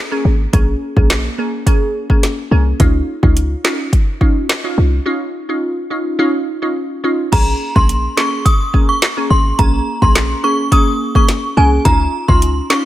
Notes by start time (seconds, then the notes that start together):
0.11 A#3 C#4 G#4
0.25 G#1
0.53 A#1 A#3 C#4 G#4, kick, closed hi-hat
0.96 A#1 A#3 C#4 G#4, kick
1.10 snare, clap, closed hi-hat
1.38 A#3 C#4 G#4
1.67 A#3 C#4 G#4, kick, closed hi-hat
2.10 A#3 C#4 G#4, kick
2.23 snare, closed hi-hat
2.51 C2 A#3 C#4 G#4
2.80 C#2 C#4 D#4 F4, kick, closed hi-hat
3.23 C#2 C#4 D#4 F4, kick
3.37 closed hi-hat
3.64 C#4 D#4 F4, snare, clap
3.93 kick, closed hi-hat
4.21 C#4 D#4 F4, kick
4.49 snare, clap, closed hi-hat
4.64 C#4 D#4 F4
4.78 C2
5.06 C#4 D#4 F4
5.49 C#4 D#4 F4
5.90 C#4 D#4 F4
6.19 C#4 D#4 F4
6.62 C#4 D#4 F4
7.04 C#4 D#4 F4
7.32 A#1 A#3 C#4 G#4 A#5, kick, closed hi-hat, crash
7.75 A#1 A#3 C#4 G#4 C6, kick
7.89 closed hi-hat
8.17 A#3 C#4 G#4 C#6, snare, clap
8.45 D#6, kick, closed hi-hat
8.73 A#3 C#4 G#4, kick
8.89 C#6
9.02 snare, clap, closed hi-hat
9.17 A#3 C#4 G#4
9.30 G#1 C6
9.58 A#1 A#3 C#4 G#4 A#5, kick, closed hi-hat
10.02 A#1 A#3 C#4 G#4 C6, kick
10.15 snare, clap, closed hi-hat
10.44 A#3 C#4 G#4 C#6
10.71 A#3 C#4 G#4 D#6, kick, closed hi-hat
11.15 A#3 C#4 G#4 C#6, kick
11.29 snare, closed hi-hat
11.57 C2 A#3 C#4 G#4 G#5
11.85 C#2 C#4 D#4 F4 A#5, kick, closed hi-hat
12.28 C#2 C#4 D#4 F4 C6, kick
12.42 closed hi-hat
12.70 C#4 D#4 F4 C#6, snare, clap